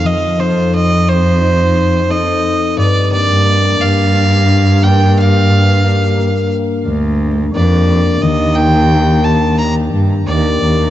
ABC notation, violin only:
X:1
M:4/4
L:1/8
Q:1/4=88
K:Gm
V:1 name="Violin"
e c e c3 e2 | d d2 f3 g f- | f3 z3 d2 | e g2 a b z d2 |]